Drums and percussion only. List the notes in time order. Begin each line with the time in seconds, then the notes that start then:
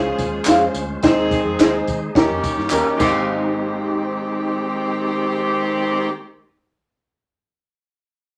0.18 kick, closed hi-hat, tambourine
0.45 snare, clap, closed hi-hat, tambourine
0.74 closed hi-hat, tambourine
1.03 kick, snare, closed hi-hat, tambourine
1.31 kick, closed hi-hat, tambourine
1.60 snare, clap, closed hi-hat, tambourine
1.87 kick, closed hi-hat, tambourine
2.15 kick, snare, closed hi-hat
2.44 kick, closed hi-hat, tambourine
2.59 snare
2.70 clap, tambourine
3.00 kick, crash, tambourine